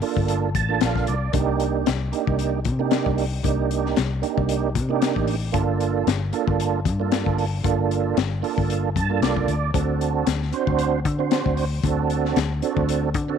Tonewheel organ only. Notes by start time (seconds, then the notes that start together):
0.02 A#3 D4 F4 A4
0.55 A5
0.69 A#3 D4 F4 A4
0.83 F5
1.08 D5
1.33 A#3 D4 D#4 G4
2.12 A#3 D4 D#4 G4
2.79 A#3 D4 D#4 G4
3.43 A#3 D4 D#4 G4
4.22 A#3 D4 D#4 G4
4.89 A#3 D4 D#4 G4
5.52 A#3 D4 F4 A4
6.33 A#3 D4 F4 A4
7.00 A#3 D4 F4 A4
7.64 A#3 D4 F4 A4
8.42 A#3 D4 F4 A4
8.96 A5
9.09 A#3 D4 F4 A4
9.22 D5
9.74 C4 D4 F#4 A4
10.52 C4 D4 F#4 C5
11.19 C4 D4 F#4 C5
11.84 C4 D4 F#4 A4
12.62 C4 D4 F#4 A4
13.28 C4 D4 F#4 A4